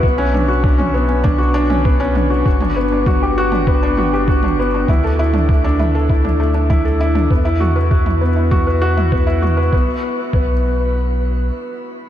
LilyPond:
<<
  \new Staff \with { instrumentName = "Felt piano" } { \time 4/4 \key e \dorian \tempo 4 = 99 b16 cis'16 d'16 fis'16 d'16 cis'16 b16 cis'16 d'16 fis'16 d'16 cis'16 b16 cis'16 d'16 fis'16 | fis'16 d'16 b16 d'16 fis'16 g'16 fis'16 d'16 b16 d'16 fis'16 g'16 fis'16 d'16 b16 d'16 | e'16 a'16 e'16 d'16 a16 d'16 e'16 a'16 e'16 d'16 a16 d'16 e'16 a'16 e'16 d'16 | b16 e'16 fis'16 b'16 fis'16 e'16 b16 e'16 fis'16 b'16 fis'16 e'16 b16 e'16 fis'16 b'16 |
b16 r8. b16 r2 r8. | }
  \new Staff \with { instrumentName = "Sub bass" } { \clef bass \time 4/4 \key e \dorian b,,1 | g,,1 | d,1 | e,1 |
b,,8 r8 b,,2 r4 | }
  \new DrumStaff \with { instrumentName = "Drums" } \drummode { \time 4/4 bd8 toml8 bd16 toml8. <bd toml>8. toml16 bd8 toml8 | bd16 toml8. <bd toml>8. toml16 bd8 toml8 bd16 toml8. | <bd toml>8. toml16 bd8 toml8 bd16 toml8. <bd toml>8. toml16 | bd8 toml8 bd16 toml8. <bd toml>8. toml16 bd8 toml8 |
bd4 bd4 r4 r4 | }
>>